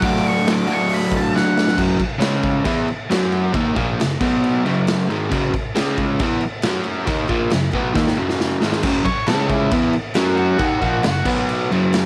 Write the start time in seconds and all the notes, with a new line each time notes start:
0.00 F#3 A3 D4 D6, kick, open hi-hat
0.05 F#4
0.16 snare
0.24 open hi-hat
0.28 C#6
0.46 snare, open hi-hat
0.52 D6
0.67 A3 D4 F#4, open hi-hat
0.71 F#3 C#6
0.89 open hi-hat
0.94 B5
1.12 kick, open hi-hat
1.17 A5
1.36 F#5, snare
1.58 snare
1.68 snare
1.77 F#2 C#3 F#3, kick, crash
1.98 muted overdriven electric guitar stroke, kick, crash
2.18 C#3 G#3 C#4, snare, crash
2.43 kick, crash
2.64 E3 B3 E4, kick, crash
2.88 muted overdriven electric guitar stroke, crash
3.10 F#3 C#4 F#4, snare, crash
3.32 crash
3.54 D#3 A#3 D#4, kick, crash
3.74 A#2 F3 A#3, kick, crash
3.99 F#2 C#3, snare, crash
4.21 B2 F#3 B3, kick, crash
4.44 crash
4.65 F#2 C#3 F#3, crash
4.87 snare, crash
5.09 G#2 D#3 G#3, crash
5.31 F#2 C#3 F#3, kick, crash
5.52 muted overdriven electric guitar stroke, kick, crash
5.75 C#3 G#3 C#4, snare, crash
5.98 kick, crash
6.19 E3 B3 E4, kick, crash
6.41 crash
6.45 muted overdriven electric guitar stroke
6.62 F#3 C#4, snare, crash
6.66 F#4
6.84 crash
7.06 D#3 A#3 D#4, kick, crash
7.28 A#2 F3 A#3, kick, crash
7.50 F#2 C#3, snare, crash
7.72 B2 F#3 B3, kick, crash
7.94 D#3 A#3 D#4, kick, snare
8.07 snare
8.17 F#2 C#3 F#3
8.29 snare
8.40 snare
8.62 G#2 D#3 G#3, snare
8.72 snare
8.83 F#2 C#3 F#3, kick, crash
9.04 C#5, muted overdriven electric guitar stroke, kick, crash
9.26 C#3 G#3 C#4 A4, snare, crash
9.47 E4, kick, crash
9.71 E3 B3 E4, kick, crash
9.93 muted overdriven electric guitar stroke, crash
10.14 F#3 C#4 F#4, snare, crash
10.36 F#4, crash
10.59 D#3 A#3 D#4, kick, crash
10.81 A#2 F3 A#3, kick, crash
11.03 F#2 C#3 F#4, snare, crash
11.25 B2 F#3 B3, kick, crash
11.49 crash
11.71 F#2 C#3 F#3, crash
11.93 snare, crash